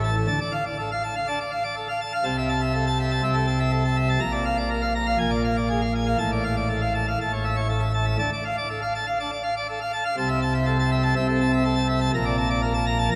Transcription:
0.00 0.26 A1 medium
0.00 0.26 A2 medium
0.00 0.10 E3 medium
0.00 0.15 A5 medium
0.16 0.27 A4 medium
0.28 0.39 D2 loud
0.28 0.39 D3 medium
0.28 0.39 A5 loud
0.41 0.52 D5 medium
0.52 0.64 F5 medium
0.66 0.77 D5 medium
0.79 0.90 A4 medium
0.92 1.03 F5 medium
1.04 1.15 A5 medium
1.16 1.27 F5 medium
1.27 1.39 D4 medium
1.27 1.39 A5 medium
1.40 1.51 D5 medium
1.51 1.63 F5 medium
1.64 1.75 D5 medium
1.76 1.88 A4 medium
1.89 2.00 F5 medium
2.01 2.12 A5 medium
2.13 2.24 F5 medium
2.24 3.21 C2 loud
2.24 3.21 C3 loud
2.24 2.36 A5 loud
2.38 2.49 E5 medium
2.49 2.61 A5 medium
2.62 2.73 E5 medium
2.73 2.85 A4 medium
2.87 2.98 A5 loud
3.00 3.11 E5 loud
3.11 3.22 A5 loud
3.23 4.19 C2 medium
3.23 4.19 C3 medium
3.23 3.35 E5 loud
3.34 3.46 A4 medium
3.47 3.59 A5 medium
3.60 3.71 E5 medium
3.71 3.83 A4 medium
3.85 3.96 A5 medium
3.97 4.08 E5 medium
4.09 4.20 A5 medium
4.20 5.16 A#1 loud
4.20 5.16 A#2 loud
4.20 4.32 A#5 loud
4.32 4.44 D5 medium
4.45 4.57 F5 medium
4.57 4.69 D5 medium
4.70 4.82 A#4 medium
4.82 4.93 F5 medium
4.95 5.06 A#5 medium
5.07 5.18 F5 medium
5.18 6.16 A#1 loud
5.18 6.16 A#2 loud
5.18 5.30 G#5 loud
5.31 5.43 D5 medium
5.45 5.56 F5 medium
5.57 5.68 D5 medium
5.70 5.81 G#4 medium
5.82 5.93 F5 medium
5.95 6.06 G#5 medium
6.06 6.17 F5 medium
6.18 7.16 A1 medium
6.18 7.16 A2 medium
6.18 6.30 A5 loud
6.32 6.43 D5 medium
6.44 6.55 F5 medium
6.56 6.68 D5 medium
6.69 6.81 A4 medium
6.81 6.93 F5 medium
6.95 7.06 A5 medium
7.08 7.18 F5 medium
7.21 8.17 A1 medium
7.21 8.17 A2 medium
7.21 7.32 A5 medium
7.33 7.44 C#5 medium
7.44 7.55 E5 medium
7.56 7.68 C#5 medium
7.69 7.80 A4 medium
7.80 7.92 E5 medium
7.94 8.05 A5 medium
8.06 8.17 E5 medium
8.19 8.29 D2 medium
8.19 8.30 D3 medium
8.19 8.30 A5 loud
8.33 8.43 D5 medium
8.45 8.56 F5 medium
8.58 8.68 D5 medium
8.69 8.80 A4 medium
8.82 8.93 F5 medium
8.95 9.06 A5 medium
9.07 9.18 F5 medium
9.20 9.30 D4 medium
9.20 9.30 A5 medium
9.32 9.42 D5 medium
9.43 9.54 F5 medium
9.57 9.67 D5 medium
9.69 9.79 A4 medium
9.81 9.92 F5 medium
9.93 10.03 A5 medium
10.05 10.15 F5 medium
10.17 11.14 C2 loud
10.17 11.14 C3 medium
10.17 10.28 A5 loud
10.29 10.40 E5 medium
10.42 10.53 A5 medium
10.54 10.65 E5 medium
10.66 10.77 A4 medium
10.79 10.90 A5 loud
10.92 11.02 E5 loud
11.03 11.14 A5 medium
11.16 12.10 C2 medium
11.16 12.10 C3 medium
11.16 11.27 E5 loud
11.28 11.39 A4 medium
11.41 11.51 A5 medium
11.52 11.63 E5 loud
11.65 11.75 A4 medium
11.76 11.87 A5 loud
11.88 11.99 E5 medium
12.01 12.11 A5 medium
12.14 13.09 A#1 loud
12.14 13.08 A#2 loud
12.14 12.25 A#5 loud
12.25 12.36 D5 medium
12.37 12.48 A5 medium
12.50 12.61 D5 medium
12.62 12.73 A#4 loud
12.74 12.85 A5 medium
12.87 12.97 A#5 loud
12.99 13.09 A5 loud
13.11 13.15 A#1 loud
13.11 13.15 A#2 loud
13.11 13.15 A#5 loud

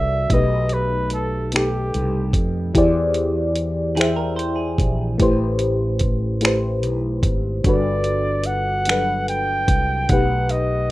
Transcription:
0.00 0.26 C2 medium
0.00 0.32 G3 medium
0.00 0.32 D4 soft
0.00 0.10 F#4 medium
0.00 0.11 A4 medium
0.00 0.11 D5 medium
0.00 0.34 E5 medium
0.30 1.90 B1 medium
0.30 1.32 B2 medium
0.30 1.32 A3 medium
0.30 1.33 D#4 medium
0.30 1.34 G4 medium
0.30 0.75 D#5 medium
0.30 kick medium
0.30 closed hi-hat medium
0.34 1.34 B4 medium
0.69 1.13 B4 medium
0.69 closed hi-hat soft
1.10 1.51 A4 medium
1.10 closed hi-hat medium
1.52 2.54 B2 medium
1.52 2.55 A3 medium
1.52 2.55 D#4 medium
1.52 2.42 G4 medium
1.52 2.56 G4 soft
1.52 finger snap medium
1.52 closed hi-hat medium
1.57 2.57 A4 medium
1.94 2.31 C2 medium
1.94 closed hi-hat soft
2.33 2.71 F2 medium
2.33 kick medium
2.33 closed hi-hat medium
2.74 4.76 E2 medium
2.74 3.76 E3 medium
2.74 3.77 E4 medium
2.74 3.77 G4 medium
2.74 3.78 G#4 medium
2.74 3.78 C5 medium
2.74 kick medium
2.74 closed hi-hat medium
2.78 3.79 D5 medium
3.14 closed hi-hat soft
3.56 closed hi-hat medium
3.96 4.99 E3 medium
3.96 4.99 E4 medium
3.96 4.16 G#4 medium
3.96 5.00 G#4 medium
3.96 5.01 C5 medium
3.96 5.00 G5 medium
3.96 closed hi-hat medium
4.01 5.01 E5 medium
4.01 finger snap medium
4.16 4.36 A#4 medium
4.36 4.57 C5 medium
4.36 closed hi-hat soft
4.56 5.15 G#4 medium
4.78 5.16 A#1 medium
4.78 kick medium
4.78 closed hi-hat soft
5.18 6.83 A1 medium
5.18 6.21 A3 medium
5.18 6.22 E4 medium
5.18 6.22 G4 medium
5.18 6.23 B4 medium
5.18 kick medium
5.18 closed hi-hat medium
5.23 6.23 C5 medium
5.59 closed hi-hat soft
5.99 kick medium
5.99 closed hi-hat medium
6.41 7.44 A3 medium
6.41 7.44 E4 medium
6.41 7.45 G4 medium
6.41 7.45 B4 medium
6.41 finger snap medium
6.41 closed hi-hat medium
6.45 7.46 C5 medium
6.83 7.20 B1 medium
6.83 closed hi-hat soft
7.23 7.61 G#1 medium
7.23 kick medium
7.23 closed hi-hat soft
7.64 9.65 G1 medium
7.64 8.66 G3 medium
7.64 8.67 D4 medium
7.64 8.68 F#4 medium
7.64 8.68 A4 medium
7.64 8.48 D5 medium
7.64 kick medium
7.64 closed hi-hat medium
7.69 8.69 B4 medium
8.04 closed hi-hat soft
8.44 9.28 F#5 loud
8.44 closed hi-hat medium
8.85 9.89 G3 medium
8.85 9.90 D4 soft
8.85 finger snap medium
8.85 closed hi-hat medium
8.90 9.90 F#3 soft
8.90 9.91 A4 soft
8.90 9.91 B4 medium
9.28 10.11 G5 medium
9.28 closed hi-hat soft
9.68 10.06 C2 medium
9.68 kick medium
9.68 closed hi-hat medium
10.09 10.91 B1 medium
10.09 10.91 B2 medium
10.09 10.91 A3 medium
10.09 10.91 D#4 medium
10.09 10.91 G4 medium
10.09 10.91 B4 medium
10.09 10.52 F#5 medium
10.09 kick loud
10.09 closed hi-hat medium
10.49 10.91 D#5 medium
10.49 closed hi-hat soft

